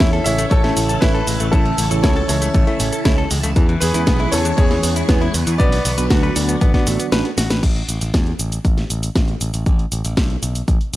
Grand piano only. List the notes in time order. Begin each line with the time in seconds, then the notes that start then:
Already playing: C#5 E5
0.24 C#5 E5
0.50 A4 C#5
1.01 E4 B4
1.52 E4 A4
2.02 A4 C#5
2.28 A4 C#5
3.80 G#4 B4
4.31 A4 C#5
4.57 G#4 C#5
5.58 B4 D5